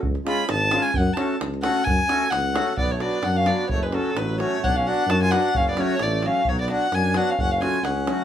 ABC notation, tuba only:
X:1
M:2/4
L:1/8
Q:"Swing 16ths" 1/4=131
K:F#m
V:1 name="Tuba" clef=bass
C,, z G,,,2 | F,, z C,,2 | F,, z C,,2 | B,,,2 F,,2 |
F,,,2 A,,,2 | B,,,2 F,,2 | F,,,2 A,,,2 | B,,,2 F,,2 |
F,,,2 C,,2 |]